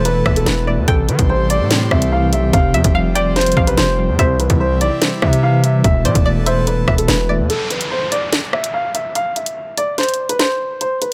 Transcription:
Already playing: 808-style bass E1, tine electric piano B2 E3 A3, analog synth pad E3 B3 A4, synth pluck E5
0.05 tine electric piano B4, upright piano B4, closed hi-hat
0.26 808-style bass E1, tine electric piano B2, synth pluck E5, kick, cross-stick
0.36 upright piano A4, closed hi-hat
0.46 808-style bass E1, tine electric piano E3, upright piano B4, snare, closed hi-hat
0.67 tine electric piano A3, synth pluck D5
0.78 808-style bass E2
0.87 808-style bass A1, tine electric piano C3, analog synth pad A3 G4 C5, upright piano A4, synth pluck G5, kick, closed hi-hat
1.09 tine electric piano E3, 808-style bass E3, upright piano B4, closed hi-hat
1.19 808-style bass A1, kick, closed hi-hat
1.29 tine electric piano G3, upright piano C5
1.50 upright piano D5, closed hi-hat
1.60 808-style bass A2
1.70 tine electric piano C4, snare, closed hi-hat
1.91 808-style bass C2, tine electric piano C3, upright piano E5, kick, cross-stick
2.02 closed hi-hat
2.11 tine electric piano E3, upright piano F5
2.32 808-style bass B1, tine electric piano G3, upright piano E5, closed hi-hat
2.43 808-style bass C2
2.53 808-style bass F1, tine electric piano C3, analog synth pad F3 C4, upright piano F5, kick, closed hi-hat
2.73 808-style bass F2, tine electric piano F3, synth pluck E5, upright piano E5, closed hi-hat
2.84 808-style bass F1, kick, closed hi-hat
2.94 tine electric piano G3, synth pluck F5
3.15 upright piano D5, synth pluck G5, closed hi-hat
3.36 tine electric piano C5, upright piano C5, snare, closed hi-hat
3.41 closed hi-hat
3.46 closed hi-hat
3.52 closed hi-hat
3.57 808-style bass A1, tine electric piano C3, synth pluck F5, kick
3.67 upright piano B4, closed hi-hat
3.77 808-style bass F1, tine electric piano F3, upright piano C5, snare, closed hi-hat
3.98 tine electric piano G3
4.09 808-style bass F2
4.19 808-style bass C2, analog synth pad C3 G3 E4, tine electric piano C3, upright piano C5, synth pluck E5, kick, closed hi-hat
4.40 tine electric piano E3, upright piano B4, closed hi-hat
4.50 808-style bass C2, kick, closed hi-hat
4.60 tine electric piano G3, upright piano C5
4.81 808-style bass B1, upright piano D5, closed hi-hat
5.01 tine electric piano C5, snare, closed hi-hat
5.22 tine electric piano C3, 808-style bass C3, upright piano E5, kick, cross-stick
5.33 closed hi-hat
5.43 tine electric piano E3, upright piano F5
5.64 tine electric piano G3, upright piano E5, closed hi-hat
5.84 808-style bass E1, tine electric piano B2, analog synth pad E3 B3 A4, upright piano E5, kick, closed hi-hat
6.05 808-style bass B2, tine electric piano E3, synth pluck C5, upright piano D5, closed hi-hat
6.15 808-style bass E1, kick, closed hi-hat
6.25 tine electric piano A3, synth pluck D5
6.46 upright piano C5, synth pluck E5, closed hi-hat
6.67 tine electric piano B4, upright piano B4, closed hi-hat
6.88 808-style bass E1, tine electric piano B2, synth pluck E5, kick, cross-stick
6.98 upright piano A4, closed hi-hat
7.08 808-style bass E1, tine electric piano E3, upright piano B4, snare, closed hi-hat
7.29 tine electric piano A3, synth pluck D5
7.40 808-style bass E2
7.50 upright piano A4, closed hi-hat, downlifter
7.70 upright piano B4, closed hi-hat
7.81 closed hi-hat
7.91 upright piano C5
8.12 upright piano D5, closed hi-hat
8.33 snare, closed hi-hat
8.53 upright piano E5, cross-stick
8.64 closed hi-hat
8.74 upright piano F5
8.95 upright piano E5, closed hi-hat
9.15 upright piano F5, closed hi-hat
9.36 upright piano E5, closed hi-hat
9.46 closed hi-hat
9.78 upright piano D5, closed hi-hat
9.98 upright piano C5, snare, closed hi-hat
10.03 closed hi-hat
10.09 closed hi-hat
10.14 closed hi-hat
10.29 upright piano B4, closed hi-hat
10.39 upright piano C5, snare, closed hi-hat
10.81 upright piano C5, closed hi-hat
11.02 upright piano B4, closed hi-hat

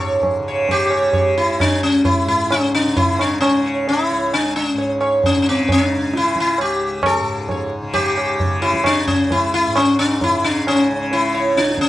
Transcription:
Already playing: tanpura C#2 G#2 C#3, sitar A4
0.01 sitar C#5
0.23 tabla tin, tabla ge
0.40 tanpura C#3
0.48 sitar C#5
0.69 sitar G4, tabla tin, tabla ge
0.90 sitar C#5, tabla na
1.03 tanpura C#3
1.13 sitar C#5, tabla tin, tabla ge
1.38 sitar E4
1.60 sitar D4, tabla na, tabla ge
1.64 tanpura C#2
1.83 sitar C#4
2.05 sitar E4, tabla tin, tabla ge
2.26 tanpura G#2, sitar E4
2.51 sitar C#4, tabla na
2.75 sitar D4
2.87 tanpura C#3
2.97 sitar E4, tabla tin, tabla ge
3.19 sitar D4, tabla na
3.41 sitar C#4, tabla na
3.50 tanpura C#3
3.66 sitar C#5
3.88 sitar E4, tabla tin
4.11 tanpura C#2, sitar C#5
4.33 sitar D4, tabla na
4.56 sitar D4
4.67 sitar C#4
4.74 tanpura G#2
4.78 sitar C#5, tabla tin
5.01 sitar C#5, tabla na
5.24 sitar C#4, tabla tin, tabla ge
5.36 tanpura C#3
5.42 sitar C#4
5.49 sitar C4
5.69 sitar D4, tabla tin, tabla ge
5.98 tanpura C#3
6.14 sitar E4, tabla te
6.25 tabla te
6.36 tabla ke
6.40 sitar E4
6.48 tabla te
6.58 tanpura C#2, sitar G4, tabla na
7.03 sitar A4, tabla na, tabla ge
7.19 tanpura G#2
7.49 sitar C#5, tabla tin, tabla ge
7.82 tanpura C#3
7.94 sitar G4, tabla tin, tabla ge
8.18 tabla na
8.40 tabla tin, tabla ge
8.45 tanpura C#3
8.62 sitar E4, tabla na
8.74 tabla ke
8.84 sitar D4, tabla na, tabla ge
9.06 tanpura C#2, sitar C#4, tabla ge
9.31 sitar E4, tabla tin, tabla ge
9.54 sitar E4
9.67 tanpura G#2
9.76 sitar C#4, tabla na
9.99 sitar D4
10.21 sitar E4, tabla tin, tabla ge
10.30 tanpura C#3
10.44 sitar D4
10.67 sitar C#4, tabla na
10.92 tanpura C#3
11.12 sitar E4, tabla tin
11.34 sitar C#5
11.54 tanpura C#2, sitar D4, tabla te
11.68 tabla te
11.78 sitar C#4, tabla ke

